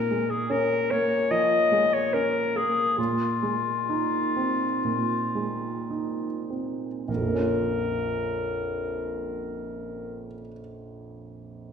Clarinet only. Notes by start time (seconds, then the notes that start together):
Already playing: A#4
0.30 G#4
0.51 A#4
0.91 C#5
1.31 D#5
1.94 C#5
2.14 A#4
2.57 G#4
2.98 F4
7.05 A#4